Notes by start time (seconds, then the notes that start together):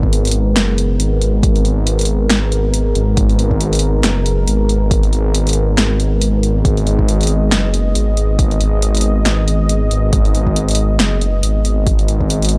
Already playing: G#1 G#3 B3 A#4
0.03 kick
0.13 closed hi-hat
0.25 closed hi-hat
0.27 closed hi-hat
0.31 closed hi-hat
0.56 F#1, snare, clap, closed hi-hat
0.78 closed hi-hat
1.00 G#1, closed hi-hat
1.22 closed hi-hat
1.43 kick, closed hi-hat
1.56 closed hi-hat
1.65 closed hi-hat
1.87 closed hi-hat
1.99 closed hi-hat
2.01 closed hi-hat
2.05 closed hi-hat
2.30 G#1, snare, clap, closed hi-hat
2.52 closed hi-hat
2.74 closed hi-hat
2.95 G#1, closed hi-hat
3.17 G#1, kick, closed hi-hat
3.29 closed hi-hat
3.39 closed hi-hat
3.51 kick
3.61 closed hi-hat
3.73 closed hi-hat
3.75 closed hi-hat
3.79 closed hi-hat
4.04 F#1, snare, clap, closed hi-hat
4.26 closed hi-hat
4.48 G#1, closed hi-hat
4.69 closed hi-hat
4.91 kick, closed hi-hat
5.03 closed hi-hat
5.13 closed hi-hat
5.35 closed hi-hat
5.47 closed hi-hat
5.49 closed hi-hat
5.53 closed hi-hat
5.78 G#1, snare, clap, closed hi-hat
6.00 closed hi-hat
6.22 closed hi-hat
6.43 closed hi-hat
6.65 G#1 D#5, kick, closed hi-hat
6.77 closed hi-hat
6.87 closed hi-hat
6.99 kick
7.08 closed hi-hat
7.21 closed hi-hat
7.23 closed hi-hat
7.27 closed hi-hat
7.52 F#1, snare, clap, closed hi-hat
7.74 closed hi-hat
7.95 G#1, closed hi-hat
8.17 closed hi-hat
8.39 kick, closed hi-hat
8.51 closed hi-hat
8.61 closed hi-hat
8.82 closed hi-hat
8.95 closed hi-hat
8.97 closed hi-hat
9.01 closed hi-hat
9.26 G#1, snare, clap, closed hi-hat
9.48 closed hi-hat
9.69 closed hi-hat
9.91 G#1, closed hi-hat
10.13 G#1, kick, closed hi-hat
10.25 closed hi-hat
10.35 closed hi-hat
10.47 kick
10.56 closed hi-hat
10.69 closed hi-hat
10.71 closed hi-hat
10.75 closed hi-hat
11.00 F#1, snare, clap, closed hi-hat
11.21 closed hi-hat
11.43 G#1, closed hi-hat
11.65 closed hi-hat
11.87 kick, closed hi-hat
11.99 closed hi-hat
12.08 closed hi-hat
12.21 kick
12.30 closed hi-hat
12.42 closed hi-hat
12.45 closed hi-hat
12.49 closed hi-hat